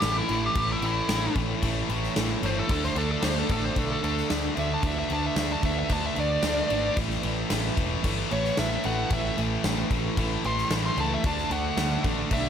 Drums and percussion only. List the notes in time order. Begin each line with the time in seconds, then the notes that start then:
0.02 snare, crash
0.29 crash
0.55 kick, crash
0.82 crash
1.09 snare, crash
1.35 kick, crash
1.63 kick, crash
1.90 crash
2.03 snare
2.16 snare, crash
2.43 crash
2.69 kick, crash
2.83 snare
2.96 crash
3.23 snare, crash
3.49 kick, crash
3.76 kick, crash
4.04 crash
4.17 snare
4.30 snare, crash
4.57 crash
4.83 kick, crash
5.10 crash
5.36 snare, crash
5.63 kick, crash
5.89 kick, crash
6.16 crash
6.43 snare, crash
6.70 crash
6.97 kick, crash
7.10 snare
7.23 crash
7.50 snare, crash
7.77 kick, crash
8.04 kick, crash
8.31 crash
8.44 snare
8.57 snare, crash
8.84 crash
9.10 kick, crash
9.38 crash
9.64 snare, crash
9.91 kick, crash
10.17 kick, crash
10.44 crash
10.58 snare
10.71 snare, crash
10.97 crash
11.24 kick, crash
11.38 snare
11.51 crash
11.77 snare, crash
12.04 kick, crash
12.31 kick, crash